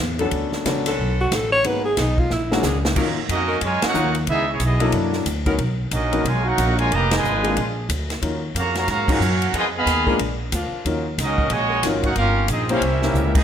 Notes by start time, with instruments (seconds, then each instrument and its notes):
0.00 upright bass E2
0.18 saxophone section D3 B3 C#4 A4, grand piano F#3 B3 C#4 D4 A4, ride
0.31 upright bass D2, kick, ride
0.52 snare
0.65 upright bass C#2, grand piano F#3 B3 C#4 D4 A4, kick, snare, hi-hat pedal, ride
0.86 saxophone section D3 B3 C#4 A4, snare, ride
0.99 upright bass B1, kick
1.21 alto saxophone F#4
1.31 upright bass A1, alto saxophone A4, kick, snare, hi-hat pedal, ride
1.52 alto saxophone C#5
1.64 upright bass G#1, grand piano G#3 A#3 B3 D#4 F#4, alto saxophone B4, kick, ride
1.85 alto saxophone G#4
1.97 upright bass B1, saxophone section F#3 B3 D#4 G#4, alto saxophone D#4, kick, snare, hi-hat pedal, ride
2.18 alto saxophone F4, kick
2.30 upright bass A#1, alto saxophone E4, snare
2.51 grand piano G#3 A#3 C#4 D4 F#4, snare
2.63 upright bass C#2, saxophone section F#3 A#3 D4 G#4, snare, hi-hat pedal
2.85 snare
2.95 upright bass D#2, saxophone section F#3 C#4 D#4 A#4, grand piano F#3 A#3 C#4 D#4 F4, kick, crash
3.18 muted upright bass stroke
3.29 upright bass F2, trombone section A#3 D#4 F#4, trumpet section C#4 F#4 A#4 D#5, kick, hi-hat pedal, ride
3.48 saxophone section F#3 C#4 D#4 A#4
3.61 upright bass F#2, trombone section G#3, trumpet section F4 C#5, kick, ride
3.65 trumpet section A#4 G#5
3.82 trombone section A#3 C#4 F#4, muted upright bass stroke, snare, ride
3.86 trumpet section D#4 A#4 C#5 F#5
3.93 upright bass D#2, grand piano F#3 A#3 C#4 D#4 F4, hi-hat pedal
4.15 ride
4.27 upright bass C#2, trombone section G#3 B3 E4, trumpet section B3 D#4 G#4 E5, kick, ride
4.47 trombone section E3 G#3 C#4
4.51 trumpet section B3 E4 G#4 C#5
4.60 upright bass B1, trombone section G#3 B3 E4, kick, hi-hat pedal, ride
4.64 trumpet section B3 E4 G#4 D#5
4.80 saxophone section F#3 D4 E4, grand piano F#3 A#3 D4 E4 A4, ride
4.92 upright bass F#2, kick, ride
5.13 snare
5.26 upright bass D2, kick, hi-hat pedal, ride
5.46 saxophone section D#3 B3 C#4 A#4, grand piano F#3 B3 C#4 D#4 A#4, kick, ride
5.58 upright bass B1, kick, ride
5.91 upright bass A#1, trombone section F#3 A#3 D#4, trumpet section C#4 F#4 A#4 D#5, kick, hi-hat pedal, ride
6.12 grand piano F#3 B3 C#4 D#4 A#4, ride
6.24 upright bass B1, trombone section G#3, trumpet section F4 A#4 C#5 G#5, kick, ride
6.43 trombone section A#3 D#4 F#4, trumpet section A#4 C#5
6.47 trumpet section D#4 F#5
6.58 upright bass A#1, kick, hi-hat pedal, ride
6.78 trombone section G#3, trumpet section F4 A#4 C#5 G#5, ride
6.91 upright bass F1, trombone section A#3, trumpet section G4 B4 D#5 A#5, kick, ride
7.09 trombone section B2 D#3 G#3, snare, ride
7.16 trumpet section F4 B4 D#5 G#5
7.24 upright bass G#1, hi-hat pedal
7.43 saxophone section F3 A#3 D4 G#4, grand piano G#3 A#3 D4 F4 A#4, ride
7.56 upright bass A#1, kick, ride
7.89 upright bass D2, kick, hi-hat pedal, ride
8.10 snare, ride
8.21 upright bass D#2, grand piano F#3 C#4 D#4 F4 A#4, kick, ride
8.55 upright bass F2, trombone section C#3 F#3 A#3, trumpet section F#4 C#5 F5 A#5, kick, hi-hat pedal, ride
8.74 trombone section C#3 F#3 A#3, saxophone section C#4 D#4 F4 F#4, trumpet section F#4 C#5 F5 A#5, snare, ride
8.87 upright bass G#2, trombone section C#3 F#3 A#3, trumpet section F#4 C#5 F5 A#5, kick, snare, ride
9.07 saxophone section F3 C#4 D#4 G#4, grand piano F#3 C#4 D#4 F4 A#4, trombone section A#3 C#4 F#4, kick, crash
9.12 trumpet section C#4 A#4 F5 F#5
9.20 upright bass F#2, hi-hat pedal
9.42 ride
9.53 upright bass F2, trombone section B2 D#3 G#3, saxophone section F3 B3 D#4 G#4, kick, ride
9.57 trumpet section F4 B4 D#5 G#5
9.77 trombone section D#3 G#3 B3, trumpet section G#4 D#5 F5 B5
9.86 upright bass D#2, kick, snare, hi-hat pedal, ride
10.07 saxophone section F3 A#3 D4 G#4, grand piano G#3 A#3 D4 F4 A#4, kick
10.19 upright bass A#1, ride
10.52 upright bass D2, saxophone section F3 A#3 D4 F4, kick, hi-hat pedal, ride
10.71 muted upright bass stroke
10.85 upright bass D#2, grand piano F#3 C#4 D#4 F4 A#4, kick, ride
11.18 upright bass C#2, trombone section F#3 A#3 D#4, kick, snare, hi-hat pedal, ride
11.22 trumpet section C#4 F#4 A#4 D#5
11.38 kick
11.50 upright bass A#1, trombone section A#2 C#3 G#3, trumpet section F#4 C#5 D#5 G#5, kick, ride
11.70 saxophone section F#3 C#4 D#4 A#4
11.83 upright bass G#1, grand piano F#3 C#4 D#4 F4 A#4, kick, snare, hi-hat pedal, ride
12.03 trombone section A#3 C#4 F#4, trumpet section D#4 A#4 C#5 F#5, kick, ride
12.16 upright bass G1, trombone section A#3 C#4 F4, trumpet section C#4 G4 A#4 F5, kick, ride
12.48 upright bass A#1, trumpet section C4 F4 G#4 D#5, trombone section D#4, kick, hi-hat pedal, ride
12.69 trombone section A#3 C#4 F4, saxophone section A#3 C#4 E4 C5, grand piano A#3 C#4 E4 G4 C5, trumpet section C#4 A#4, ride
12.73 trumpet section G4 F5
12.81 upright bass C2, trombone section G3 A#3 E4, trumpet section C#4 G4 A#4 E5, kick, ride
13.02 grand piano A#3 C#4 E4 G4 A#4, snare
13.13 upright bass C#2, hi-hat pedal, mid tom
13.35 trombone section B2 D#3 G#3, trumpet section B3 D#4 G#4, kick, crash